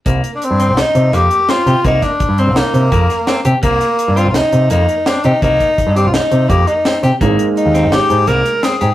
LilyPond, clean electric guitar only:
\new Staff \with { instrumentName = "Clean electric guitar" } { \time 5/4 \key c \minor \tempo 4 = 168 bes4 r8 c'8 ees'4 bes4 c'8 g'8 | bes4 r8 c'8 ees'4 bes4 c'8 g'8 | bes4 r8 c'8 ees'4 bes4 c'8 g'8 | bes4 r8 c'8 ees'4 bes4 c'8 g'8 |
bes4 r8 c'8 ees'4 bes4 c'8 g'8 | }